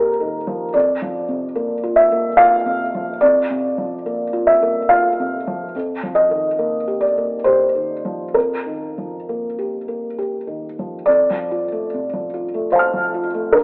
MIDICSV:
0, 0, Header, 1, 2, 480
1, 0, Start_track
1, 0, Key_signature, -1, "major"
1, 0, Tempo, 820793
1, 434, Time_signature, 3, 2, 24, 8
1, 1875, Tempo, 845070
1, 3795, Tempo, 881057
1, 4755, Tempo, 903614
1, 6195, Tempo, 825309
1, 7694, End_track
2, 0, Start_track
2, 0, Title_t, "Felt piano"
2, 0, Program_c, 0, 0
2, 0, Control_c, 0, 64, 127
2, 0, Note_on_c, 0, 41, 36
2, 0, Note_on_c, 0, 51, 34
2, 0, Note_on_c, 0, 53, 35
2, 0, Note_on_c, 0, 58, 34
2, 0, Note_on_c, 0, 67, 42
2, 0, Note_on_c, 0, 70, 65
2, 0, Note_on_c, 0, 72, 52
2, 119, Note_off_c, 0, 51, 0
2, 119, Note_on_c, 0, 51, 35
2, 211, Note_off_c, 0, 67, 0
2, 275, Note_off_c, 0, 53, 0
2, 275, Note_on_c, 0, 53, 38
2, 372, Note_off_c, 0, 51, 0
2, 406, Note_off_c, 0, 41, 0
2, 428, Note_off_c, 0, 70, 0
2, 431, Note_on_c, 0, 74, 59
2, 434, Note_off_c, 0, 53, 0
2, 437, Note_on_c, 0, 41, 40
2, 444, Control_c, 0, 64, 0
2, 450, Note_off_c, 0, 58, 0
2, 450, Note_off_c, 0, 72, 0
2, 547, Control_c, 0, 64, 127
2, 596, Note_on_c, 0, 53, 37
2, 751, Note_on_c, 0, 48, 38
2, 849, Note_off_c, 0, 53, 0
2, 909, Note_on_c, 0, 58, 41
2, 1006, Note_off_c, 0, 48, 0
2, 1072, Note_on_c, 0, 65, 37
2, 1146, Note_on_c, 0, 76, 69
2, 1149, Note_off_c, 0, 74, 0
2, 1165, Note_off_c, 0, 58, 0
2, 1237, Note_on_c, 0, 58, 38
2, 1327, Note_off_c, 0, 65, 0
2, 1386, Note_on_c, 0, 77, 76
2, 1388, Note_off_c, 0, 76, 0
2, 1393, Note_on_c, 0, 65, 40
2, 1491, Note_off_c, 0, 58, 0
2, 1555, Note_on_c, 0, 48, 36
2, 1649, Note_off_c, 0, 65, 0
2, 1722, Note_on_c, 0, 53, 37
2, 1812, Note_off_c, 0, 48, 0
2, 1853, Note_off_c, 0, 41, 0
2, 1873, Note_off_c, 0, 77, 0
2, 1876, Note_on_c, 0, 74, 68
2, 1884, Control_c, 0, 64, 0
2, 1884, Note_on_c, 0, 41, 43
2, 1974, Note_off_c, 0, 53, 0
2, 1985, Control_c, 0, 64, 127
2, 2042, Note_on_c, 0, 48, 37
2, 2199, Note_on_c, 0, 53, 33
2, 2294, Note_off_c, 0, 48, 0
2, 2359, Note_on_c, 0, 58, 41
2, 2453, Note_off_c, 0, 53, 0
2, 2513, Note_on_c, 0, 65, 38
2, 2591, Note_on_c, 0, 76, 61
2, 2595, Note_off_c, 0, 74, 0
2, 2613, Note_off_c, 0, 58, 0
2, 2679, Note_on_c, 0, 58, 39
2, 2770, Note_off_c, 0, 65, 0
2, 2831, Note_on_c, 0, 77, 69
2, 2834, Note_off_c, 0, 76, 0
2, 2840, Note_on_c, 0, 65, 39
2, 2934, Note_off_c, 0, 58, 0
2, 3005, Note_on_c, 0, 48, 34
2, 3094, Note_off_c, 0, 65, 0
2, 3162, Note_on_c, 0, 53, 40
2, 3255, Note_off_c, 0, 48, 0
2, 3296, Note_off_c, 0, 41, 0
2, 3311, Note_off_c, 0, 77, 0
2, 3317, Note_off_c, 0, 53, 0
2, 3324, Control_c, 0, 64, 0
2, 3324, Note_on_c, 0, 41, 44
2, 3426, Control_c, 0, 64, 127
2, 3480, Note_on_c, 0, 53, 36
2, 3548, Note_on_c, 0, 75, 63
2, 3638, Note_on_c, 0, 51, 35
2, 3734, Note_off_c, 0, 53, 0
2, 3796, Note_on_c, 0, 58, 36
2, 3891, Note_off_c, 0, 51, 0
2, 3953, Note_on_c, 0, 67, 32
2, 4025, Note_on_c, 0, 74, 54
2, 4029, Note_off_c, 0, 75, 0
2, 4048, Note_off_c, 0, 58, 0
2, 4117, Note_on_c, 0, 58, 33
2, 4206, Note_off_c, 0, 67, 0
2, 4263, Note_on_c, 0, 72, 58
2, 4266, Note_off_c, 0, 74, 0
2, 4272, Note_on_c, 0, 67, 34
2, 4368, Note_off_c, 0, 58, 0
2, 4429, Note_on_c, 0, 51, 27
2, 4526, Note_off_c, 0, 67, 0
2, 4592, Note_on_c, 0, 53, 32
2, 4689, Note_off_c, 0, 51, 0
2, 4739, Note_off_c, 0, 41, 0
2, 4752, Note_off_c, 0, 72, 0
2, 4753, Note_on_c, 0, 70, 39
2, 4760, Note_on_c, 0, 41, 32
2, 4763, Control_c, 0, 64, 0
2, 4847, Control_c, 0, 64, 127
2, 4854, Note_off_c, 0, 53, 0
2, 4921, Note_on_c, 0, 51, 27
2, 5089, Note_on_c, 0, 53, 29
2, 5181, Note_off_c, 0, 51, 0
2, 5255, Note_on_c, 0, 58, 31
2, 5345, Note_off_c, 0, 53, 0
2, 5412, Note_on_c, 0, 67, 28
2, 5508, Note_off_c, 0, 58, 0
2, 5568, Note_on_c, 0, 58, 26
2, 5665, Note_off_c, 0, 67, 0
2, 5724, Note_off_c, 0, 70, 0
2, 5729, Note_on_c, 0, 67, 31
2, 5821, Note_off_c, 0, 58, 0
2, 5882, Note_on_c, 0, 51, 27
2, 5981, Note_off_c, 0, 67, 0
2, 6051, Note_on_c, 0, 53, 25
2, 6134, Note_off_c, 0, 51, 0
2, 6177, Note_off_c, 0, 41, 0
2, 6194, Note_on_c, 0, 74, 67
2, 6201, Note_off_c, 0, 53, 0
2, 6204, Note_on_c, 0, 41, 32
2, 6206, Control_c, 0, 64, 0
2, 6323, Control_c, 0, 64, 127
2, 6336, Note_on_c, 0, 53, 33
2, 6459, Note_on_c, 0, 65, 33
2, 6526, Note_off_c, 0, 53, 0
2, 6580, Note_on_c, 0, 57, 30
2, 6648, Note_off_c, 0, 65, 0
2, 6707, Note_on_c, 0, 48, 34
2, 6768, Note_off_c, 0, 57, 0
2, 6819, Note_on_c, 0, 53, 29
2, 6890, Note_off_c, 0, 48, 0
2, 6938, Note_on_c, 0, 65, 31
2, 7004, Note_off_c, 0, 53, 0
2, 7057, Note_on_c, 0, 57, 34
2, 7122, Note_off_c, 0, 65, 0
2, 7160, Note_on_c, 0, 72, 53
2, 7163, Note_off_c, 0, 74, 0
2, 7165, Note_on_c, 0, 77, 27
2, 7182, Note_on_c, 0, 81, 27
2, 7203, Note_on_c, 0, 89, 27
2, 7285, Note_on_c, 0, 53, 26
2, 7405, Note_on_c, 0, 65, 33
2, 7429, Note_off_c, 0, 57, 0
2, 7473, Note_off_c, 0, 53, 0
2, 7523, Note_on_c, 0, 57, 33
2, 7592, Note_off_c, 0, 65, 0
2, 7614, Note_off_c, 0, 77, 0
2, 7618, Note_off_c, 0, 41, 0
2, 7623, Note_off_c, 0, 81, 0
2, 7628, Note_on_c, 0, 70, 58
2, 7633, Note_off_c, 0, 89, 0
2, 7635, Note_off_c, 0, 72, 0
2, 7636, Note_on_c, 0, 43, 38
2, 7639, Note_off_c, 0, 57, 0
2, 7646, Control_c, 0, 64, 0
2, 7694, Note_off_c, 0, 43, 0
2, 7694, Note_off_c, 0, 70, 0
2, 7694, End_track
0, 0, End_of_file